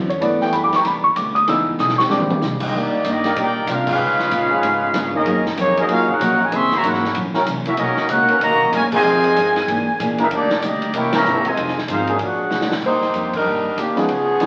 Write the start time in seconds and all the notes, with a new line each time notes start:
Already playing: E2 D3 F#3 C4 E4
0.09 C#5, ride
0.20 G2 E3 G3 A3 B3 D5, ride
0.24 E4 A4
0.41 E3 A3 B3 G4 G5, muted upright bass stroke, snare
0.52 F#2 G3 B3 E4 A4 B5, hi-hat pedal, ride
0.64 D6
0.72 E3 A3 B3 G4 C#6, snare, ride
0.81 E2 G3 A#5, snare, ride
0.86 B3 E4 A4 B5
1.04 C#6, kick
1.16 D2 G3 B3 E4 A4 D6, hi-hat pedal, ride
1.35 D#6, ride
1.47 C#2 C#3 E3 B3 D#4 E4 E6, snare, ride
1.51 G#4
1.67 kick
1.78 B1 C#3 B3 E4 G#4 D#6, snare, hi-hat pedal
1.89 snare
1.98 D3 C4 G4 C#6, snare
2.09 A#1 A#2 G3 G#3 C4 D4 D6, snare
2.14 G4
2.20 mid tom
2.30 mid tom
2.41 C2 A#2 G#3 D4 G4, snare, hi-hat pedal
2.60 D#4, kick, crash
2.65 C4 F4 G#4 D#5
2.72 D#2 D#3 G3 A#3 D4 D#4
2.77 A#3 D#4 G4 D5
3.03 G2 D#3 G3 A#3 D4 D#4, hi-hat pedal, ride
3.09 A#3 G4 D5 D#5
3.23 D#3 A#3 D4 G4, snare, ride
3.36 A#2 D#3 G3 A#3 D4 D#4 G4 D5, ride
3.40 D#4 A#4 G5
3.67 C3 D#3 G3 A#3 D4 F4 G4 A#4, hi-hat pedal, ride
3.71 F5
3.87 G#3 D#4 F4, kick, crash
3.91 C#4 G#4 B4 F5
3.99 C#3 G#3 B3
4.03 F4
4.19 snare
4.30 A#2 C#3 G#3 B3 F4, hi-hat pedal, ride
4.50 F3 B3 C#4 G#4
4.62 G#2 C#3 G#3 B3 F4, ride
4.93 G2 C#3 G#3 B3 F4, snare, hi-hat pedal, ride
5.14 D#3 A#3 C#4 D#4 G#4 A#4 D#5, kick
5.25 F#2 F#3 A#3 D#4 G#4, ride
5.46 snare
5.56 F2 D#3 F#3 A#3 C#4 D#4 G#4 C#5, hi-hat pedal, ride
5.60 A#3 D#4 G#4
5.77 D#3 F#3 A#3 C#4 D#4 G#4 A#4 D#5, ride
5.88 D#2 F#3 A#3 C#4 D#4 F4 F#4 G#4 A#4 F5, ride
6.08 C#4 D#4 F#4 A#4 C#5 F#5, kick
6.19 A#1 F#3 A#3 D#4 G#4, hi-hat pedal, ride
6.41 C#3 D#3 G#3 D#4 A#4 C#5 G#5
6.51 F#1 F#2 E3 A#3 C4 C#4 G#4 C#5 E5 C6, ride
6.71 C#3 E3 A#3 F#4 C#5 E5 A#5, snare
6.82 G#1 F#2 E3 A#3 C#4 E4 F#4 A#4 F#5, hi-hat pedal, ride
6.87 C#5
6.94 snare
7.04 snare
7.14 A#1 F#2 E3 A#3 C#4, ride
7.34 F#3 C#4 E4 A#4, snare
7.45 C2 F#2 E3 A#3 C#4, hi-hat pedal, ride
7.65 A#3 C#4 E4 F#4 A#4 E5, ride
7.77 B1 B2 D#3 F#3 A#3 C#4 D#4 F#4 A#4 D#5, ride
7.97 snare
8.08 C#2 B2 D#3 A#3 C#4 D#4 F#4 A#4 C#5 F#5, hi-hat pedal, ride
8.28 D#3 B3 C#4 A#4, ride
8.39 D#2 B2 D#3 F#3 A#3 C#4 F#4 C#5 D#5 A#5, ride
8.50 B1
8.61 A#1
8.72 F#2 B2 D#3 G#3 A#3 C#4 F4 A#4 C#5 G#5, hi-hat pedal, ride
8.92 C3 D#3 F4 G#4 C5 D#5 G#5, muted upright bass stroke, kick, crash
9.03 F2 D#3 F3 G#3 C4 D#4 G#4
9.24 ride
9.35 F2 G2 D#3 G#3 C4, hi-hat pedal, ride
9.56 snare, ride
9.67 G#2 E3 A#3 D4 G#4, ride
9.87 muted upright bass stroke
9.99 A#2 E3 A#3 D4 G#4, hi-hat pedal, ride
10.18 D#3 G#3 A#3 B3 D4 E4 G#4 A#4 B4 E5, ride
10.30 D#2 D#3 G3 A#3 D4 D#4 G4 D5, ride
10.41 D2
10.50 A#1, snare
10.58 D2 D5
10.62 D#3 G3 A#3 D4 D#4 G4 D5 D#5, hi-hat pedal, ride
10.82 ride
10.93 C2 C3 E3 A#3 C#4 E4 G4 A#4 C#5 G5, ride
11.12 E3 G3 A#3 C4 C#4 G4 A#4 C#5 E5 A#5, snare, ride
11.24 G1 C3 E3 A#3 C#4, hi-hat pedal
11.44 C3 D#3 G#3 F4 C5 D#5 G#5, muted upright bass stroke, ride
11.56 F1 F2 D#3 G#3 C4, ride
11.68 snare
11.78 snare
11.88 G#1 F2 D#3 G#3 C4 D#4 F4 G#4 C5 F5, hi-hat pedal, ride
11.92 C4
12.07 F#3 A#3 D4 G#4, ride
12.16 A#1 F5, ride
12.20 A#2 G#3 D4 F#4 G#4 C#5 F#5
12.24 D4
12.50 D2 A#2 G#3 D4 F#4, snare, hi-hat pedal
12.61 snare
12.71 snare
12.82 D#2 D#3 G3 A#3 D4 D#4 G4 C5, kick, crash
13.01 snare
13.13 F2 D#3 G3 A#3 D4, hi-hat pedal, ride
13.33 D4 A#4, kick, crash
13.37 G3 D#4
13.45 G2 D#3 G3 A#3 D4
13.65 kick
13.77 D#2 D#3 G3 A#3 D4 G4, hi-hat pedal, ride
13.96 F3 G#3 B3 C#4 D#4 G#4, muted upright bass stroke, snare, ride
14.00 B3
14.09 C#2 C#3 G#3 B3 F4, ride
14.40 B1 C#3 F3 G#3 B3 C#4 D#4 F4, hi-hat pedal, ride